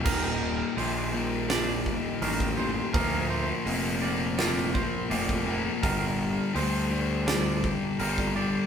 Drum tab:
CC |x---------------|----------------|----------------|
HH |----o---o---o---|o---o---o---o---|o---o---o---o---|
SD |--------o-------|--------oo------|--------o-------|
BD |o---------o--o--|o---------o--o--|o---------o--o--|